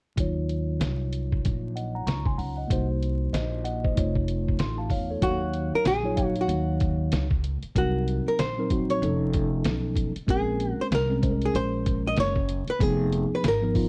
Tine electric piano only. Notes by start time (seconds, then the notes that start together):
0.16 F#3 D#4 F4
0.20 C#5
1.76 D#5 F#5
1.95 F#5 A#5
2.07 A#5 C#6
2.26 G#5 C6
2.38 F#5 A#5
2.57 D#5 F#5
2.68 A#3 D#4 F#4
2.72 C5
3.33 C5 D#5
3.65 D#5 F#5
3.84 C5 D#5
3.95 A3 D#4 F4 C#5
4.59 C6
4.78 F5 A5
4.91 C#5 F5
5.10 A4 C#5
5.21 F#3 D#4 C#5 F5
6.03 F#3 D#4 F4 C#5
6.15 F#3 D#4 C#5 F5
7.75 F#3 C4 D#4 A#4
8.57 F#3 C4 D#4 A#4
8.70 F#3 C4 D#4 F#4
9.02 F3 C#4 D#4 A4
10.27 G#3 C4 C#4 A#4
11.09 G#3 C4 C#4 A#4
11.22 G#3 C#4 C5
11.31 A#4
12.79 F3 B3 D#4 G#4
13.62 F3 B3 D#4 A#4
13.74 F3 B3 D#4 F4